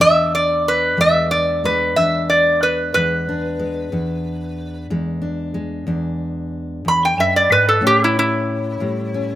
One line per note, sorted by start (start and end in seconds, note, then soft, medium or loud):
0.00 0.97 E2 medium
0.00 1.31 D4 medium
0.00 0.32 E5 loud
0.35 0.65 D5 medium
0.68 0.98 B4 medium
0.97 1.96 E2 medium
0.97 1.64 G#3 medium
0.97 1.31 E5 medium
1.31 1.97 D4 medium
1.31 1.62 D5 medium
1.64 2.94 G#3 medium
1.64 1.96 B4 medium
1.96 2.94 E2 medium
1.96 3.27 D4 medium
1.96 2.27 E5 medium
2.30 2.60 D5 medium
2.63 2.93 B4 medium
2.94 3.91 E2 medium
2.94 3.58 G#3 medium
2.94 4.86 B4 medium
3.29 3.89 D4 medium
3.59 3.88 G#3 medium
3.92 4.89 E2 medium
3.92 5.20 D4 medium
4.90 5.85 E2 medium
4.90 5.53 G#3 medium
5.22 5.86 D4 medium
5.54 7.79 G#3 medium
5.87 6.84 E2 medium
5.87 7.79 D4 medium
6.85 7.16 E2 medium
6.85 7.02 B5 medium
7.05 7.19 G5 medium
7.17 7.49 F#2 medium
7.17 7.35 E5 medium
7.36 7.51 D5 medium
7.50 7.82 G#2 medium
7.50 7.67 B4 medium
7.69 7.83 A4 medium
7.81 8.80 A2 medium
7.81 9.14 C#4 medium
7.87 8.01 G4 medium
8.04 8.18 E4 medium
8.19 9.35 E4 medium
8.80 9.35 A2 medium
8.80 9.35 G3 medium
9.14 9.35 C#4 medium